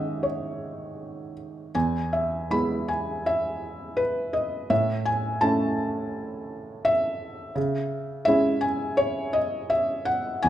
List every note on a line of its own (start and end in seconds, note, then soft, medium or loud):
0.00 1.71 G#2 medium
0.00 1.71 D#3 soft
0.00 1.70 G#3 soft
0.00 1.71 C#4 soft
0.00 0.24 D#5 medium
0.00 1.76 E5 medium
0.00 1.76 F#5 medium
0.00 1.75 G#5 medium
0.23 1.33 C#5 medium
1.75 4.66 E2 soft
1.75 2.10 G#5 medium
2.13 2.52 E5 medium
2.50 4.66 G#3 soft
2.50 4.66 B3 soft
2.50 4.67 E4 soft
2.50 2.90 B5 medium
2.88 3.26 G#5 medium
3.26 4.00 E5 medium
3.97 4.31 B4 medium
4.33 4.67 D#5 medium
4.70 7.52 A2 medium
4.70 5.08 E5 medium
5.05 5.43 G#5 medium
5.41 7.52 A3 soft
5.41 7.52 C#4 soft
5.41 7.52 E4 soft
5.41 6.90 A5 medium
6.85 8.23 E5 medium
7.55 10.40 C#3 medium
8.25 10.40 G#3 soft
8.25 10.40 C#4 soft
8.25 10.40 E4 medium
8.25 8.64 E5 medium
8.61 8.96 G#5 medium
8.97 9.35 C#5 medium
9.33 9.72 D#5 medium
9.70 10.08 E5 medium
10.05 10.44 F#5 medium
10.43 10.49 E2 medium
10.43 10.49 G#5 medium